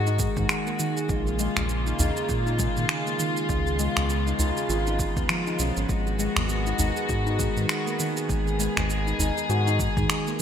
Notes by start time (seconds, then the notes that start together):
Already playing: G#2 D#3 G#3 F#4
0.07 D#4, shaker
0.19 G#3, kick, shaker
0.37 G#2 D#3, kick, udu, shaker
0.49 G#4, finger snap, shaker
0.67 A#3, shaker
0.79 D#3, shaker
0.97 G#4, shaker
1.09 A#1 C#3 G#3 A#3 F4, kick, shaker
1.27 G#4, shaker
1.39 G#3, shaker
1.57 A#1 G#3, finger snap, udu, shaker
1.69 G#4, shaker
1.87 D#4, shaker
1.99 A#1 D#4, udu, shaker
2.17 G#4, shaker
2.29 A#2 F4, kick, shaker
2.47 D#4, shaker
2.59 G#3, kick, shaker
2.77 A#2 D#3, shaker
2.89 G#4, finger snap, shaker
3.07 A#3, shaker
3.19 D#3, shaker
3.37 G#4, shaker
3.49 C#2 C#3 G#3 B3, kick, shaker
3.67 G#4, shaker
3.79 G#3, shaker
3.97 C#2 G#3, finger snap, udu, shaker
4.09 G#4, shaker
4.27 D#4, shaker
4.39 C#2 D#4, udu, shaker
4.57 G#4, shaker
4.69 G#1 F4, shaker
4.87 D#4, shaker
4.99 D#3, kick, shaker
5.16 B3, kick, udu, shaker
5.29 F3, finger snap, shaker
5.47 D#4, shaker
5.59 B1 C#4, shaker
5.77 G#1 C#4, shaker
5.89 G#1 D#3 G#3 F#4, kick, shaker
6.07 G#4, shaker
6.19 G#3, shaker
6.36 G#1 G#3, finger snap, udu, shaker
6.49 G#4, shaker
6.67 D#4, shaker
6.79 G#1 D#4, udu, shaker
6.97 G#4, shaker
7.09 G#2 F#4, kick, shaker
7.27 D#4, shaker
7.39 G#3, kick, shaker
7.57 G#2 D#3, shaker
7.69 G#4, finger snap, shaker
7.87 A#3, shaker
8.00 D#3, shaker
8.17 G#4, shaker
8.29 G#1 G#3 G#4, kick, shaker
8.47 G#4, shaker
8.59 G#3, shaker
8.77 G#1 G#3, finger snap, udu, shaker
8.90 G#4, shaker
9.07 D#4, shaker
9.19 G#1 D#4, udu, shaker
9.37 G#4, shaker
9.49 G#2 F#4, shaker
9.67 D#4, shaker
9.80 G#3, kick, shaker
9.97 G#2 D#3, kick, udu, shaker
10.10 G#4, finger snap, shaker
10.27 A#3, shaker